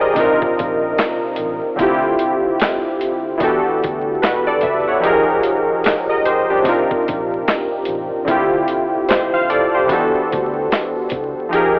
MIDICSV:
0, 0, Header, 1, 5, 480
1, 0, Start_track
1, 0, Tempo, 810811
1, 1060, Time_signature, 4, 2, 24, 8
1, 6981, End_track
2, 0, Start_track
2, 0, Title_t, "Synth keys"
2, 0, Program_c, 0, 88
2, 0, Control_c, 0, 64, 127
2, 0, Note_on_c, 0, 53, 72
2, 0, Note_on_c, 0, 63, 67
2, 0, Note_on_c, 0, 67, 58
2, 0, Note_on_c, 0, 68, 60
2, 0, Note_on_c, 0, 70, 83
2, 0, Note_on_c, 0, 72, 65
2, 0, Note_on_c, 0, 74, 65
2, 6, Note_on_c, 0, 75, 63
2, 9, Note_off_c, 0, 70, 0
2, 9, Note_on_c, 0, 70, 58
2, 71, Note_off_c, 0, 53, 0
2, 76, Note_off_c, 0, 63, 0
2, 81, Note_on_c, 0, 48, 73
2, 88, Note_on_c, 0, 60, 64
2, 96, Note_on_c, 0, 62, 64
2, 103, Note_on_c, 0, 63, 66
2, 107, Control_c, 0, 64, 0
2, 110, Note_off_c, 0, 72, 0
2, 110, Note_on_c, 0, 65, 64
2, 111, Note_off_c, 0, 70, 0
2, 111, Note_off_c, 0, 74, 0
2, 112, Note_off_c, 0, 67, 0
2, 113, Note_off_c, 0, 68, 0
2, 118, Note_on_c, 0, 70, 78
2, 212, Control_c, 0, 64, 127
2, 234, Note_off_c, 0, 75, 0
2, 1031, Note_off_c, 0, 48, 0
2, 1035, Note_off_c, 0, 60, 0
2, 1038, Note_off_c, 0, 62, 0
2, 1040, Note_on_c, 0, 50, 74
2, 1042, Note_off_c, 0, 63, 0
2, 1046, Note_off_c, 0, 65, 0
2, 1049, Note_on_c, 0, 60, 67
2, 1050, Note_off_c, 0, 70, 0
2, 1059, Note_on_c, 0, 64, 73
2, 1068, Control_c, 0, 64, 0
2, 1068, Note_on_c, 0, 65, 64
2, 1077, Note_on_c, 0, 67, 83
2, 1185, Control_c, 0, 64, 127
2, 1990, Note_off_c, 0, 50, 0
2, 1995, Note_off_c, 0, 60, 0
2, 1999, Note_on_c, 0, 52, 73
2, 2000, Note_off_c, 0, 64, 0
2, 2005, Note_off_c, 0, 65, 0
2, 2007, Note_on_c, 0, 59, 60
2, 2009, Note_off_c, 0, 67, 0
2, 2015, Note_on_c, 0, 62, 62
2, 2022, Note_on_c, 0, 66, 67
2, 2027, Control_c, 0, 64, 0
2, 2030, Note_on_c, 0, 67, 68
2, 2037, Note_on_c, 0, 69, 72
2, 2113, Control_c, 0, 64, 127
2, 2491, Note_off_c, 0, 66, 0
2, 2495, Note_off_c, 0, 67, 0
2, 2499, Note_off_c, 0, 69, 0
2, 2500, Note_on_c, 0, 71, 64
2, 2504, Note_on_c, 0, 66, 54
2, 2639, Note_off_c, 0, 71, 0
2, 2641, Note_off_c, 0, 66, 0
2, 2646, Note_on_c, 0, 74, 75
2, 2650, Note_on_c, 0, 69, 66
2, 2735, Note_off_c, 0, 74, 0
2, 2737, Note_off_c, 0, 69, 0
2, 2739, Note_on_c, 0, 76, 70
2, 2743, Note_on_c, 0, 71, 55
2, 2879, Note_off_c, 0, 76, 0
2, 2881, Note_off_c, 0, 71, 0
2, 2887, Note_on_c, 0, 78, 54
2, 2891, Note_on_c, 0, 73, 50
2, 2950, Note_off_c, 0, 52, 0
2, 2954, Note_off_c, 0, 59, 0
2, 2958, Note_off_c, 0, 62, 0
2, 2962, Note_on_c, 0, 53, 73
2, 2971, Note_on_c, 0, 63, 65
2, 2980, Note_on_c, 0, 67, 68
2, 2988, Control_c, 0, 64, 0
2, 2990, Note_on_c, 0, 68, 61
2, 3000, Note_on_c, 0, 70, 87
2, 3079, Control_c, 0, 64, 127
2, 3115, Note_off_c, 0, 78, 0
2, 3117, Note_off_c, 0, 73, 0
2, 3446, Note_off_c, 0, 63, 0
2, 3450, Note_off_c, 0, 67, 0
2, 3455, Note_off_c, 0, 68, 0
2, 3460, Note_off_c, 0, 70, 0
2, 3607, Note_on_c, 0, 75, 63
2, 3610, Note_on_c, 0, 70, 54
2, 3695, Note_off_c, 0, 75, 0
2, 3697, Note_off_c, 0, 70, 0
2, 3700, Note_on_c, 0, 72, 64
2, 3704, Note_on_c, 0, 67, 57
2, 3839, Note_off_c, 0, 72, 0
2, 3841, Note_off_c, 0, 67, 0
2, 3847, Note_on_c, 0, 67, 69
2, 3851, Note_on_c, 0, 62, 58
2, 3911, Note_off_c, 0, 53, 0
2, 3922, Note_on_c, 0, 48, 67
2, 3928, Note_on_c, 0, 60, 65
2, 3929, Note_off_c, 0, 62, 0
2, 3936, Note_on_c, 0, 62, 64
2, 3944, Note_on_c, 0, 63, 57
2, 3948, Control_c, 0, 64, 0
2, 3951, Note_on_c, 0, 65, 61
2, 3959, Note_on_c, 0, 70, 75
2, 4069, Control_c, 0, 64, 127
2, 4075, Note_off_c, 0, 67, 0
2, 4871, Note_off_c, 0, 48, 0
2, 4875, Note_off_c, 0, 60, 0
2, 4879, Note_off_c, 0, 62, 0
2, 4882, Note_on_c, 0, 50, 70
2, 4883, Note_off_c, 0, 63, 0
2, 4886, Note_off_c, 0, 65, 0
2, 4891, Note_off_c, 0, 70, 0
2, 4891, Note_on_c, 0, 60, 64
2, 4900, Note_on_c, 0, 64, 67
2, 4907, Control_c, 0, 64, 0
2, 4910, Note_on_c, 0, 65, 65
2, 4920, Note_on_c, 0, 67, 78
2, 5003, Control_c, 0, 64, 127
2, 5378, Note_off_c, 0, 67, 0
2, 5381, Note_on_c, 0, 72, 64
2, 5385, Note_on_c, 0, 67, 48
2, 5520, Note_off_c, 0, 72, 0
2, 5522, Note_off_c, 0, 67, 0
2, 5528, Note_on_c, 0, 77, 68
2, 5531, Note_on_c, 0, 72, 63
2, 5616, Note_off_c, 0, 77, 0
2, 5617, Note_off_c, 0, 72, 0
2, 5622, Note_on_c, 0, 74, 67
2, 5626, Note_on_c, 0, 69, 54
2, 5760, Note_off_c, 0, 74, 0
2, 5762, Note_off_c, 0, 69, 0
2, 5769, Note_on_c, 0, 72, 63
2, 5772, Note_on_c, 0, 67, 56
2, 5831, Note_off_c, 0, 50, 0
2, 5836, Note_off_c, 0, 60, 0
2, 5841, Note_off_c, 0, 64, 0
2, 5842, Note_on_c, 0, 52, 67
2, 5846, Note_off_c, 0, 65, 0
2, 5850, Note_on_c, 0, 59, 62
2, 5857, Note_on_c, 0, 62, 66
2, 5865, Note_on_c, 0, 66, 62
2, 5866, Note_off_c, 0, 67, 0
2, 5866, Control_c, 0, 64, 0
2, 5873, Note_on_c, 0, 67, 61
2, 5880, Note_on_c, 0, 69, 72
2, 5982, Control_c, 0, 64, 127
2, 5996, Note_off_c, 0, 72, 0
2, 6791, Note_off_c, 0, 52, 0
2, 6795, Note_off_c, 0, 59, 0
2, 6799, Note_off_c, 0, 62, 0
2, 6802, Note_on_c, 0, 53, 69
2, 6803, Note_off_c, 0, 66, 0
2, 6807, Note_off_c, 0, 67, 0
2, 6811, Note_off_c, 0, 69, 0
2, 6812, Note_on_c, 0, 63, 62
2, 6821, Note_on_c, 0, 67, 70
2, 6827, Control_c, 0, 64, 0
2, 6830, Note_on_c, 0, 68, 67
2, 6839, Note_on_c, 0, 70, 78
2, 6923, Control_c, 0, 64, 127
2, 6981, Note_off_c, 0, 53, 0
2, 6981, Note_off_c, 0, 63, 0
2, 6981, Note_off_c, 0, 67, 0
2, 6981, Note_off_c, 0, 68, 0
2, 6981, Note_off_c, 0, 70, 0
2, 6981, End_track
3, 0, Start_track
3, 0, Title_t, "Fingered electric bass"
3, 0, Program_c, 1, 33
3, 98, Note_on_c, 1, 36, 100
3, 223, Note_off_c, 1, 36, 0
3, 359, Note_on_c, 1, 34, 86
3, 554, Note_off_c, 1, 34, 0
3, 826, Note_on_c, 1, 33, 81
3, 947, Note_off_c, 1, 33, 0
3, 1063, Note_on_c, 1, 38, 107
3, 1264, Note_off_c, 1, 38, 0
3, 2019, Note_on_c, 1, 40, 108
3, 2143, Note_off_c, 1, 40, 0
3, 2279, Note_on_c, 1, 38, 93
3, 2474, Note_off_c, 1, 38, 0
3, 2746, Note_on_c, 1, 37, 83
3, 2867, Note_off_c, 1, 37, 0
3, 2986, Note_on_c, 1, 41, 97
3, 3186, Note_off_c, 1, 41, 0
3, 3939, Note_on_c, 1, 36, 94
3, 4063, Note_off_c, 1, 36, 0
3, 4201, Note_on_c, 1, 34, 75
3, 4395, Note_off_c, 1, 34, 0
3, 4666, Note_on_c, 1, 33, 76
3, 4787, Note_off_c, 1, 33, 0
3, 4903, Note_on_c, 1, 38, 99
3, 5104, Note_off_c, 1, 38, 0
3, 5860, Note_on_c, 1, 40, 104
3, 5984, Note_off_c, 1, 40, 0
3, 6120, Note_on_c, 1, 38, 83
3, 6314, Note_off_c, 1, 38, 0
3, 6586, Note_on_c, 1, 37, 86
3, 6708, Note_off_c, 1, 37, 0
3, 6827, Note_on_c, 1, 41, 94
3, 6981, Note_off_c, 1, 41, 0
3, 6981, End_track
4, 0, Start_track
4, 0, Title_t, "Muted fingered electric bass strokes"
4, 253, Note_on_c, 9, 29, 45
4, 312, Note_off_c, 9, 29, 0
4, 2173, Note_on_c, 9, 29, 47
4, 2232, Note_off_c, 9, 29, 0
4, 4094, Note_on_c, 9, 29, 45
4, 4154, Note_off_c, 9, 29, 0
4, 6015, Note_on_c, 9, 29, 44
4, 6074, Note_off_c, 9, 29, 0
4, 6981, End_track
5, 0, Start_track
5, 0, Title_t, "Drums"
5, 95, Note_on_c, 9, 36, 85
5, 96, Note_on_c, 9, 42, 80
5, 106, Note_on_c, 9, 38, 35
5, 154, Note_off_c, 9, 36, 0
5, 155, Note_off_c, 9, 42, 0
5, 165, Note_off_c, 9, 38, 0
5, 249, Note_on_c, 9, 36, 86
5, 308, Note_off_c, 9, 36, 0
5, 350, Note_on_c, 9, 42, 58
5, 355, Note_on_c, 9, 36, 91
5, 410, Note_off_c, 9, 42, 0
5, 415, Note_off_c, 9, 36, 0
5, 583, Note_on_c, 9, 42, 71
5, 586, Note_on_c, 9, 38, 103
5, 590, Note_on_c, 9, 39, 80
5, 642, Note_off_c, 9, 42, 0
5, 645, Note_off_c, 9, 38, 0
5, 649, Note_off_c, 9, 39, 0
5, 807, Note_on_c, 9, 42, 75
5, 866, Note_off_c, 9, 42, 0
5, 1058, Note_on_c, 9, 36, 105
5, 1060, Note_on_c, 9, 42, 75
5, 1118, Note_off_c, 9, 36, 0
5, 1120, Note_off_c, 9, 42, 0
5, 1296, Note_on_c, 9, 42, 72
5, 1355, Note_off_c, 9, 42, 0
5, 1537, Note_on_c, 9, 42, 67
5, 1549, Note_on_c, 9, 38, 118
5, 1553, Note_on_c, 9, 39, 97
5, 1596, Note_off_c, 9, 42, 0
5, 1608, Note_off_c, 9, 38, 0
5, 1612, Note_off_c, 9, 39, 0
5, 1781, Note_on_c, 9, 42, 65
5, 1841, Note_off_c, 9, 42, 0
5, 2015, Note_on_c, 9, 36, 85
5, 2016, Note_on_c, 9, 42, 79
5, 2027, Note_on_c, 9, 38, 35
5, 2074, Note_off_c, 9, 36, 0
5, 2076, Note_off_c, 9, 42, 0
5, 2086, Note_off_c, 9, 38, 0
5, 2272, Note_on_c, 9, 42, 63
5, 2276, Note_on_c, 9, 36, 93
5, 2331, Note_off_c, 9, 42, 0
5, 2335, Note_off_c, 9, 36, 0
5, 2505, Note_on_c, 9, 42, 72
5, 2508, Note_on_c, 9, 38, 103
5, 2513, Note_on_c, 9, 39, 83
5, 2564, Note_off_c, 9, 42, 0
5, 2568, Note_off_c, 9, 38, 0
5, 2572, Note_off_c, 9, 39, 0
5, 2729, Note_on_c, 9, 42, 78
5, 2741, Note_on_c, 9, 36, 89
5, 2788, Note_off_c, 9, 42, 0
5, 2800, Note_off_c, 9, 36, 0
5, 2982, Note_on_c, 9, 42, 71
5, 3041, Note_off_c, 9, 42, 0
5, 3218, Note_on_c, 9, 42, 75
5, 3277, Note_off_c, 9, 42, 0
5, 3459, Note_on_c, 9, 42, 71
5, 3471, Note_on_c, 9, 38, 110
5, 3475, Note_on_c, 9, 39, 93
5, 3518, Note_off_c, 9, 42, 0
5, 3530, Note_off_c, 9, 38, 0
5, 3534, Note_off_c, 9, 39, 0
5, 3702, Note_on_c, 9, 42, 71
5, 3761, Note_off_c, 9, 42, 0
5, 3936, Note_on_c, 9, 36, 81
5, 3937, Note_on_c, 9, 42, 78
5, 3948, Note_on_c, 9, 38, 33
5, 3995, Note_off_c, 9, 36, 0
5, 3996, Note_off_c, 9, 42, 0
5, 4007, Note_off_c, 9, 38, 0
5, 4091, Note_on_c, 9, 36, 86
5, 4150, Note_off_c, 9, 36, 0
5, 4191, Note_on_c, 9, 42, 62
5, 4197, Note_on_c, 9, 36, 94
5, 4251, Note_off_c, 9, 42, 0
5, 4256, Note_off_c, 9, 36, 0
5, 4426, Note_on_c, 9, 42, 66
5, 4429, Note_on_c, 9, 38, 102
5, 4433, Note_on_c, 9, 39, 84
5, 4485, Note_off_c, 9, 42, 0
5, 4488, Note_off_c, 9, 38, 0
5, 4492, Note_off_c, 9, 39, 0
5, 4649, Note_on_c, 9, 42, 76
5, 4708, Note_off_c, 9, 42, 0
5, 4900, Note_on_c, 9, 36, 107
5, 4902, Note_on_c, 9, 42, 75
5, 4959, Note_off_c, 9, 36, 0
5, 4962, Note_off_c, 9, 42, 0
5, 5138, Note_on_c, 9, 42, 67
5, 5197, Note_off_c, 9, 42, 0
5, 5380, Note_on_c, 9, 42, 71
5, 5392, Note_on_c, 9, 38, 121
5, 5396, Note_on_c, 9, 39, 88
5, 5439, Note_off_c, 9, 42, 0
5, 5451, Note_off_c, 9, 38, 0
5, 5455, Note_off_c, 9, 39, 0
5, 5624, Note_on_c, 9, 42, 66
5, 5683, Note_off_c, 9, 42, 0
5, 5856, Note_on_c, 9, 36, 85
5, 5857, Note_on_c, 9, 42, 77
5, 5868, Note_on_c, 9, 38, 35
5, 5915, Note_off_c, 9, 36, 0
5, 5917, Note_off_c, 9, 42, 0
5, 5927, Note_off_c, 9, 38, 0
5, 6112, Note_on_c, 9, 42, 59
5, 6117, Note_on_c, 9, 36, 94
5, 6171, Note_off_c, 9, 42, 0
5, 6176, Note_off_c, 9, 36, 0
5, 6347, Note_on_c, 9, 42, 69
5, 6350, Note_on_c, 9, 38, 98
5, 6354, Note_on_c, 9, 39, 77
5, 6406, Note_off_c, 9, 42, 0
5, 6409, Note_off_c, 9, 38, 0
5, 6413, Note_off_c, 9, 39, 0
5, 6571, Note_on_c, 9, 42, 82
5, 6582, Note_on_c, 9, 36, 91
5, 6630, Note_off_c, 9, 42, 0
5, 6641, Note_off_c, 9, 36, 0
5, 6823, Note_on_c, 9, 42, 74
5, 6883, Note_off_c, 9, 42, 0
5, 6981, End_track
0, 0, End_of_file